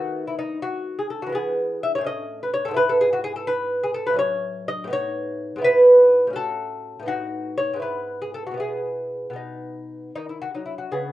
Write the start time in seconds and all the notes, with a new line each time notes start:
Already playing: D#3 A3 B3 F#4
0.27 E4
0.39 D#4
0.62 F#4
0.99 G#4
1.10 A4
1.22 F#4
1.27 E3 G#3
1.32 B3 G#4
1.83 E5
1.95 A2 C#5
2.01 A3 C#4
2.06 D#5
2.43 B4
2.54 C#5
2.65 G#2 A4
2.71 B3 E4
2.76 B4
2.89 A4
3.01 G#4
3.13 F#4
3.24 G#4
3.36 A4
3.47 B4
3.83 G#4
3.94 A4
4.06 A2 B4
4.14 F#3 C#4
4.19 C#5
4.68 D#5
4.84 A2 B3
4.90 D#4 C#5
5.56 G#2 B3
5.62 E4 B4
6.27 A2 C#4
6.33 F#4 A4
7.00 A2 B3
7.06 D#4 F#4
7.58 C#5
7.74 G#2 B3
7.80 E4 B4
8.22 G#4
8.34 A4
8.47 F#4
8.51 B2 B3
8.57 E4 G#4
9.30 B2 B3
9.36 D#4
10.16 D#3 D#4
10.29 E4
10.42 F#4
10.54 F#3 D#4
10.66 E4
10.78 F#4
10.91 C#3 B3 G#4